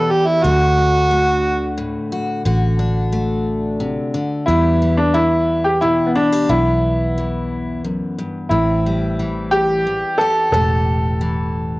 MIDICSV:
0, 0, Header, 1, 5, 480
1, 0, Start_track
1, 0, Key_signature, 1, "minor"
1, 0, Tempo, 671892
1, 317, Time_signature, 3, 2, 24, 8
1, 8428, End_track
2, 0, Start_track
2, 0, Title_t, "Harmonica"
2, 0, Program_c, 0, 22
2, 0, Note_on_c, 0, 69, 87
2, 74, Note_on_c, 0, 67, 85
2, 85, Note_off_c, 0, 69, 0
2, 189, Note_on_c, 0, 64, 94
2, 199, Note_off_c, 0, 67, 0
2, 313, Note_on_c, 0, 66, 109
2, 324, Note_off_c, 0, 64, 0
2, 1246, Note_off_c, 0, 66, 0
2, 8428, End_track
3, 0, Start_track
3, 0, Title_t, "Upright piano"
3, 0, Program_c, 1, 0
3, 3183, Note_on_c, 1, 64, 83
3, 3525, Note_off_c, 1, 64, 0
3, 3552, Note_on_c, 1, 62, 74
3, 3670, Note_on_c, 1, 64, 92
3, 3679, Note_off_c, 1, 62, 0
3, 4009, Note_off_c, 1, 64, 0
3, 4031, Note_on_c, 1, 67, 83
3, 4150, Note_on_c, 1, 64, 93
3, 4158, Note_off_c, 1, 67, 0
3, 4330, Note_on_c, 1, 59, 54
3, 4350, Note_off_c, 1, 64, 0
3, 4390, Note_off_c, 1, 59, 0
3, 4397, Note_on_c, 1, 62, 79
3, 4639, Note_on_c, 1, 64, 82
3, 4645, Note_off_c, 1, 62, 0
3, 5571, Note_off_c, 1, 64, 0
3, 6068, Note_on_c, 1, 64, 71
3, 6766, Note_off_c, 1, 64, 0
3, 6796, Note_on_c, 1, 67, 109
3, 7272, Note_on_c, 1, 69, 93
3, 7293, Note_off_c, 1, 67, 0
3, 7507, Note_off_c, 1, 69, 0
3, 7518, Note_on_c, 1, 69, 80
3, 8428, Note_off_c, 1, 69, 0
3, 8428, End_track
4, 0, Start_track
4, 0, Title_t, "Steel-string acoustic guitar"
4, 0, Program_c, 2, 25
4, 0, Note_on_c, 2, 40, 77
4, 0, Note_on_c, 2, 47, 65
4, 0, Note_on_c, 2, 52, 67
4, 0, Note_on_c, 2, 55, 68
4, 0, Note_on_c, 2, 67, 70
4, 77, Note_off_c, 2, 47, 0
4, 288, Note_off_c, 2, 52, 0
4, 293, Note_off_c, 2, 67, 0
4, 317, Note_on_c, 2, 50, 76
4, 318, Note_off_c, 2, 55, 0
4, 320, Note_off_c, 2, 40, 0
4, 324, Note_on_c, 2, 62, 66
4, 553, Note_off_c, 2, 62, 0
4, 556, Note_on_c, 2, 62, 55
4, 792, Note_on_c, 2, 57, 64
4, 1269, Note_on_c, 2, 45, 63
4, 1515, Note_on_c, 2, 66, 69
4, 1726, Note_off_c, 2, 57, 0
4, 1727, Note_off_c, 2, 66, 0
4, 1728, Note_off_c, 2, 62, 0
4, 1744, Note_off_c, 2, 50, 0
4, 1753, Note_off_c, 2, 45, 0
4, 1753, Note_on_c, 2, 50, 78
4, 1758, Note_on_c, 2, 66, 76
4, 1993, Note_on_c, 2, 62, 61
4, 2232, Note_on_c, 2, 57, 66
4, 2713, Note_on_c, 2, 48, 64
4, 2948, Note_off_c, 2, 50, 0
4, 2956, Note_off_c, 2, 48, 0
4, 2956, Note_on_c, 2, 50, 64
4, 3166, Note_off_c, 2, 57, 0
4, 3167, Note_off_c, 2, 62, 0
4, 3169, Note_off_c, 2, 66, 0
4, 3197, Note_off_c, 2, 50, 0
4, 3198, Note_on_c, 2, 40, 71
4, 3201, Note_on_c, 2, 52, 54
4, 3206, Note_on_c, 2, 55, 52
4, 3212, Note_on_c, 2, 59, 57
4, 3438, Note_off_c, 2, 55, 0
4, 3441, Note_on_c, 2, 55, 57
4, 3669, Note_off_c, 2, 52, 0
4, 3672, Note_on_c, 2, 52, 56
4, 4158, Note_on_c, 2, 47, 56
4, 4396, Note_on_c, 2, 64, 63
4, 4518, Note_off_c, 2, 64, 0
4, 4518, Note_on_c, 2, 67, 52
4, 4610, Note_off_c, 2, 47, 0
4, 4630, Note_off_c, 2, 40, 0
4, 4633, Note_off_c, 2, 59, 0
4, 4638, Note_on_c, 2, 40, 70
4, 4639, Note_off_c, 2, 67, 0
4, 4642, Note_on_c, 2, 59, 62
4, 5126, Note_off_c, 2, 52, 0
4, 5129, Note_on_c, 2, 52, 57
4, 5600, Note_off_c, 2, 40, 0
4, 5604, Note_on_c, 2, 42, 58
4, 5626, Note_off_c, 2, 55, 0
4, 5842, Note_off_c, 2, 42, 0
4, 5847, Note_on_c, 2, 43, 68
4, 6079, Note_on_c, 2, 45, 69
4, 6080, Note_off_c, 2, 59, 0
4, 6082, Note_on_c, 2, 60, 57
4, 6084, Note_off_c, 2, 43, 0
4, 6332, Note_on_c, 2, 55, 59
4, 6565, Note_off_c, 2, 52, 0
4, 6568, Note_on_c, 2, 52, 60
4, 7040, Note_off_c, 2, 45, 0
4, 7050, Note_on_c, 2, 40, 56
4, 7294, Note_on_c, 2, 67, 69
4, 7493, Note_off_c, 2, 60, 0
4, 7525, Note_off_c, 2, 40, 0
4, 7527, Note_on_c, 2, 45, 71
4, 7529, Note_off_c, 2, 67, 0
4, 7532, Note_on_c, 2, 67, 61
4, 8004, Note_off_c, 2, 52, 0
4, 8007, Note_on_c, 2, 52, 59
4, 8428, Note_off_c, 2, 45, 0
4, 8428, Note_off_c, 2, 52, 0
4, 8428, Note_off_c, 2, 55, 0
4, 8428, Note_off_c, 2, 67, 0
4, 8428, End_track
5, 0, Start_track
5, 0, Title_t, "Fingered electric bass"
5, 0, Program_c, 3, 33
5, 318, Note_on_c, 3, 38, 85
5, 1401, Note_off_c, 3, 38, 0
5, 1754, Note_on_c, 3, 33, 77
5, 2839, Note_off_c, 3, 33, 0
5, 3199, Note_on_c, 3, 40, 79
5, 4282, Note_off_c, 3, 40, 0
5, 4638, Note_on_c, 3, 35, 81
5, 5722, Note_off_c, 3, 35, 0
5, 6077, Note_on_c, 3, 33, 77
5, 7161, Note_off_c, 3, 33, 0
5, 7516, Note_on_c, 3, 28, 76
5, 8428, Note_off_c, 3, 28, 0
5, 8428, End_track
0, 0, End_of_file